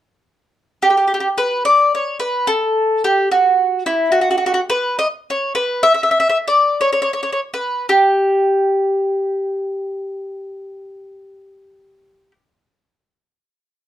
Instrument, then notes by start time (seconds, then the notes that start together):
mandolin
0.82 G4
0.90 G4
0.97 G4
1.07 G4
1.14 G4
1.20 G4
1.38 B4
1.65 D5
1.95 C#5
2.20 B4
2.47 A4
3.04 G4
3.32 F#4
3.86 E4
4.12 F#4
4.21 F#4
4.31 F#4
4.38 F#4
4.46 F#4
4.54 F#4
4.70 B4
4.99 D#5
5.30 C#5
5.55 B4
5.83 E5
5.94 E5
6.03 E5
6.11 E5
6.20 E5
6.29 E5
6.48 D5
6.81 C#5
6.93 C#5
7.02 C#5
7.13 C#5
7.23 C#5
7.32 C#5
7.54 B4
7.89 G4